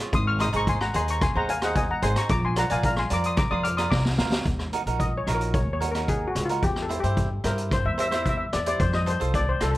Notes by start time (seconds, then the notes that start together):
Already playing: F4 G#4 C#5
0.13 G#1 C6 D#6, kick, closed hi-hat
0.27 C#6 F6
0.39 D#4 G#4 C5 C6 D#6, cross-stick, closed hi-hat
0.53 G#1 D#4 G#4 C5 A#5 C#6, closed hi-hat
0.67 G#5 C6, kick, closed hi-hat
0.81 F#5 A#5, cross-stick
0.94 D#2 D#4 G#4 C5 G#5 C6, closed hi-hat
1.08 A#5 C#6, closed hi-hat
1.21 G#5 C6, kick, cross-stick, closed hi-hat
1.35 D#2 D#4 G#4 C5 F#5 A#5
1.49 F5 G#5, closed hi-hat
1.62 D#4 G#4 C5 D#5 F#5, cross-stick, closed hi-hat
1.75 D#5 G#5, kick, closed hi-hat
1.91 F#5 A#5
2.02 G#1 D#4 G#4 C5 G#5 C6, closed hi-hat
2.16 A#5 C#6, cross-stick, closed hi-hat
2.29 A#1 A#5 D6, kick, closed hi-hat
2.45 G#5 C6
2.56 F4 A#4 D5 F#5 A#5, cross-stick, closed hi-hat
2.70 A#1 F4 A#4 D5 F5 G#5, closed hi-hat
2.83 F5 A#5, kick, closed hi-hat
2.97 G#5 C6, cross-stick
3.10 F2 F4 A#4 D5 A#5 D6, closed hi-hat
3.24 C6 D#6, closed hi-hat
3.37 A#5 D6, kick, cross-stick, closed hi-hat
3.51 F2 F4 A#4 D5 C6 D#6
3.63 D6 F6, closed hi-hat
3.77 F4 A#4 D5 C6 D#6, cross-stick, closed hi-hat
3.91 C2 A#5 D6, kick, snare
4.05 snare
4.18 D2 F4 A#4 F5, snare
4.32 snare
4.45 D#2, kick, closed hi-hat
4.59 cross-stick
4.73 D#4 F#4 A#4, closed hi-hat
4.86 A#1 D#4 F#4 A#4, closed hi-hat
5.00 D#5, kick, closed hi-hat
5.18 C#5
5.27 A#1 D#4 F#4 A#4, cross-stick, closed hi-hat
5.35 A#4
5.41 closed hi-hat
5.54 C#5, kick, closed hi-hat
5.67 D#2
5.73 C#5
5.80 D#4 F#4 A#4, closed hi-hat
5.91 D#4 A#4, cross-stick, closed hi-hat
5.95 F#4
6.08 G#4, kick, closed hi-hat
6.28 F#4
6.35 C#2, cross-stick, closed hi-hat
6.45 F4, closed hi-hat
6.50 D#4 F#4 A#4
6.62 E2 G4, kick, closed hi-hat
6.76 cross-stick
6.82 A4
6.89 E4 G4 C5, closed hi-hat
7.00 G2 G4 C5, closed hi-hat
7.04 E4
7.17 kick, closed hi-hat
7.44 G2 E4 G4 A#4 C5, cross-stick, closed hi-hat
7.58 closed hi-hat
7.71 C5, kick, cross-stick, closed hi-hat
7.85 E2 E5
7.98 E4 G4 C5 E5, closed hi-hat
8.08 G4 C5 E5
8.12 E4 E5, cross-stick, closed hi-hat
8.23 E5, kick, closed hi-hat
8.29 E5
8.37 E5
8.53 E2 D5, cross-stick, closed hi-hat
8.66 E4 G4 C5 D5, closed hi-hat
8.80 F2 C5, kick, closed hi-hat
8.93 D#5, cross-stick
9.06 F4 A4 C5, closed hi-hat
9.20 C2 F4 A4 C5, closed hi-hat
9.34 D5, kick, closed hi-hat
9.49 C5
9.61 C2 F4 A4 C5, cross-stick, closed hi-hat
9.71 A4